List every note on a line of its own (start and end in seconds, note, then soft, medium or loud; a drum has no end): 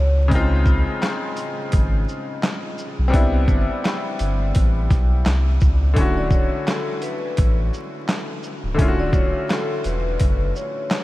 0.00 0.83 C#2 loud
0.00 0.28 C#5 medium
0.28 3.08 C#3 medium
0.28 3.09 G#3 medium
0.28 3.07 C4 medium
0.28 kick loud
0.28 closed hi-hat medium
0.33 3.11 D#4 medium
0.33 3.12 F4 medium
0.66 kick medium
0.66 shaker medium
1.03 snare loud
1.03 clap medium
1.03 closed hi-hat medium
1.37 closed hi-hat medium
1.37 shaker medium
1.72 2.06 G#1 loud
1.72 kick medium
1.72 closed hi-hat loud
2.08 shaker medium
2.43 snare loud
2.43 clap medium
2.43 closed hi-hat medium
2.78 shaker medium
2.99 3.13 B1 loud
3.08 5.90 G3 medium
3.08 5.91 B3 medium
3.08 5.89 C4 medium
3.13 3.46 C2 loud
3.13 5.92 D4 medium
3.13 5.93 E4 medium
3.13 kick loud
3.13 closed hi-hat medium
3.48 3.67 G1 loud
3.48 kick loud
3.48 shaker medium
3.85 snare loud
3.85 clap medium
3.85 closed hi-hat medium
4.19 4.52 G1 loud
4.19 closed hi-hat medium
4.19 shaker medium
4.55 4.88 A1 loud
4.55 kick medium
4.55 closed hi-hat loud
4.90 5.23 B1 medium
4.90 kick loud
4.90 snare soft
4.90 closed hi-hat medium
4.90 shaker medium
5.26 5.58 C2 loud
5.26 snare loud
5.26 clap medium
5.26 closed hi-hat medium
5.60 5.94 C#2 medium
5.60 kick loud
5.60 shaker medium
5.94 6.48 D1 loud
5.94 8.73 D3 medium
5.94 8.74 A3 medium
5.94 8.75 C#4 medium
5.94 kick loud
5.94 closed hi-hat medium
5.99 8.76 E4 medium
5.99 8.77 F#4 medium
6.17 6.31 D5 medium
6.31 6.64 C#5 medium
6.31 kick loud
6.31 shaker medium
6.67 6.99 A4 medium
6.67 snare loud
6.67 clap medium
6.67 closed hi-hat medium
7.02 7.55 B4 medium
7.02 closed hi-hat medium
7.02 shaker medium
7.37 7.70 A1 loud
7.37 kick loud
7.37 closed hi-hat loud
7.74 shaker medium
8.09 snare loud
8.09 clap loud
8.09 closed hi-hat medium
8.43 shaker medium
8.64 8.78 C#1 medium
8.74 11.04 D3 medium
8.74 11.04 A3 medium
8.74 11.04 C#4 medium
8.79 9.11 D1 loud
8.79 11.04 E4 medium
8.79 8.88 F4 medium
8.79 kick loud
8.79 closed hi-hat medium
8.88 11.04 F#4 medium
9.00 9.13 D5 medium
9.13 9.32 D1 loud
9.13 9.46 C#5 medium
9.13 kick loud
9.13 shaker medium
9.50 9.81 A4 medium
9.50 snare loud
9.50 clap medium
9.50 closed hi-hat medium
9.84 10.17 E1 medium
9.84 10.52 B4 medium
9.84 closed hi-hat medium
9.84 shaker medium
10.20 10.53 F#1 loud
10.20 kick medium
10.20 closed hi-hat loud
10.56 11.04 C#5 medium
10.56 shaker medium
10.91 snare loud
10.91 clap loud
10.91 closed hi-hat medium